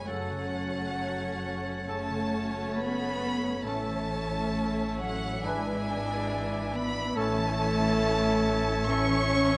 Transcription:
0.00 0.11 F2 soft
0.00 0.11 F3 soft
0.00 0.11 B3 soft
0.00 0.11 G#4 soft
0.00 0.11 B4 soft
0.00 0.97 C#5 soft
0.00 0.11 G#5 soft
0.07 3.61 F#1 soft
0.07 1.86 F#2 soft
0.07 0.42 C#3 soft
0.07 1.84 F#3 medium
0.07 1.87 F#3 medium
0.07 1.84 A3 medium
0.07 0.41 C#4 medium
0.07 1.84 C#4 medium
0.07 1.84 F#4 medium
0.07 0.42 A4 medium
0.07 5.13 C#5 medium
0.07 1.84 C#5 medium
0.07 1.62 F#5 medium
0.07 1.87 F#5 medium
0.07 3.33 A5 soft
0.30 2.08 C#3 soft
0.53 2.30 A3 soft
0.75 2.52 F#4 soft
0.98 1.42 C#5 soft
1.21 2.97 F#5 soft
1.43 2.75 C#5 soft
1.65 3.41 A4 soft
1.87 3.68 F#2 soft
1.87 2.21 C#3 soft
1.87 3.61 A3 medium
1.87 2.74 A3 medium
1.87 2.75 A3 medium
1.87 3.61 C#4 medium
1.87 2.21 C#4 soft
1.87 3.61 F#4 medium
1.87 2.21 A4 soft
1.87 3.61 C#5 medium
1.87 2.74 A5 medium
1.87 2.76 A5 medium
2.09 3.69 C#3 soft
2.31 4.08 A3 soft
2.53 3.68 F#4 soft
2.76 3.65 B3 medium
2.76 3.19 C#5 medium
2.76 3.63 B5 medium
2.76 3.65 B5 medium
2.98 3.68 F#5 soft
3.21 4.53 C#5 medium
3.43 5.22 A4 soft
3.64 5.41 A1 medium
3.64 5.48 A2 medium
3.64 3.98 E3 medium
3.64 5.41 A3 medium
3.64 4.98 A3 medium
3.64 5.00 A3 medium
3.64 5.41 C#4 medium
3.64 3.98 C#4 medium
3.64 5.41 E4 medium
3.64 3.98 A4 medium
3.64 5.41 C#5 medium
3.64 7.12 E5 medium
3.64 5.00 A5 medium
3.87 5.48 E3 soft
4.09 5.48 A3 soft
4.31 6.08 E4 soft
4.54 4.99 C#5 medium
4.77 6.50 E5 medium
5.00 5.44 F#3 medium
5.00 5.45 F#3 medium
5.00 5.48 C#5 soft
5.00 5.44 F#5 medium
5.23 5.48 A4 medium
5.42 7.16 G#1 medium
5.42 7.20 G#2 medium
5.42 5.76 E3 medium
5.42 7.15 E3 medium
5.42 6.73 G#3 medium
5.42 6.57 G#3 medium
5.42 5.76 D4 medium
5.42 7.17 D4 medium
5.42 7.13 E4 medium
5.42 7.16 B4 medium
5.42 5.77 B4 medium
5.42 7.17 D5 medium
5.42 6.73 G#5 medium
5.42 6.74 G#5 medium
5.66 7.20 G#3 medium
5.87 7.20 B3 soft
6.09 7.79 E4 medium
6.30 6.71 D5 medium
6.51 8.21 E5 medium
6.72 7.16 B3 medium
6.72 7.20 D5 medium
6.72 7.16 B5 medium
6.72 7.17 B5 loud
6.94 7.20 B4 medium
7.15 9.57 A1 medium
7.15 8.86 A2 medium
7.15 7.48 E3 medium
7.15 8.84 E3 medium
7.15 8.87 A3 medium
7.15 8.87 A3 loud
7.15 8.84 C#4 medium
7.15 7.48 C#4 medium
7.15 8.84 E4 medium
7.15 7.48 A4 medium
7.15 8.86 A4 medium
7.15 9.57 C#5 medium
7.15 9.57 E5 medium
7.15 8.64 A5 medium
7.15 8.85 A5 loud
7.37 9.08 E3 medium
7.58 9.29 A3 medium
7.80 9.51 E4 medium
8.01 8.43 C#5 medium
8.22 9.57 E5 medium
8.44 9.57 C#5 medium
8.66 9.57 A4 medium
8.87 9.57 A2 medium
8.87 9.57 E3 medium
8.87 9.19 E3 medium
8.87 9.57 C#4 medium
8.87 9.57 C#4 loud
8.87 9.20 C#4 medium
8.87 9.57 C#4 loud
8.87 9.57 E4 medium
8.87 9.57 A4 medium
8.87 9.20 A4 medium
8.87 9.57 C#6 loud
9.09 9.57 E3 medium
9.30 9.57 A3 medium
9.53 9.57 E4 medium

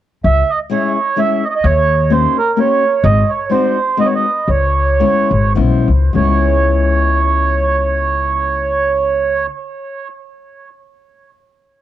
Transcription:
0.24 0.41 C#2 medium
0.24 0.51 E5 medium
0.50 0.59 D#5 medium
0.70 0.96 G#3 medium
0.70 0.96 C#4 soft
0.70 0.97 E4 soft
0.70 0.97 G#4 medium
0.70 1.20 C#5 medium
1.16 1.42 G#3 soft
1.16 1.43 C#4 medium
1.16 1.43 E4 soft
1.16 1.43 G#4 medium
1.16 1.44 E5 medium
1.44 1.48 D#5 medium
1.49 1.54 D#5 medium
1.55 1.66 D#5 medium
1.64 2.24 D#2 medium
1.64 2.12 C#5 medium
2.10 2.36 A#3 medium
2.10 2.36 C#4 soft
2.10 2.36 D#4 soft
2.10 2.36 G4 medium
2.10 2.37 C5 medium
2.38 2.59 A#4 medium
2.56 2.82 A#3 medium
2.56 2.82 C#4 soft
2.56 2.83 D#4 soft
2.56 2.83 G4 medium
2.56 3.06 C#5 medium
3.04 3.20 G#1 medium
3.04 3.30 D#5 medium
3.29 3.51 C#5 medium
3.50 3.76 G#3 medium
3.50 3.76 C4 medium
3.50 3.77 D#4 medium
3.50 3.77 F#4 medium
3.50 4.00 C5 medium
3.97 4.25 G#3 medium
3.97 4.25 C4 soft
3.97 4.25 D#4 medium
3.97 4.25 F#4 medium
3.97 4.07 D#5 medium
4.05 4.14 C#5 medium
4.15 4.49 D#5 medium
4.48 5.01 C#2 medium
4.48 5.53 C#5 medium
5.00 5.30 G#3 medium
5.00 5.30 B3 soft
5.00 5.30 C#4 soft
5.00 5.30 E4 medium
5.31 5.54 G#1 medium
5.55 5.85 B1 medium
5.55 5.88 G#3 medium
5.55 5.88 B3 medium
5.55 5.88 C#4 medium
5.55 5.88 E4 medium
5.88 6.13 C#2 medium
6.13 9.46 C#2 medium
6.13 9.44 G#3 medium
6.13 9.45 B3 medium
6.13 9.47 C#4 medium
6.13 9.47 C#5 medium
6.18 9.49 E4 medium

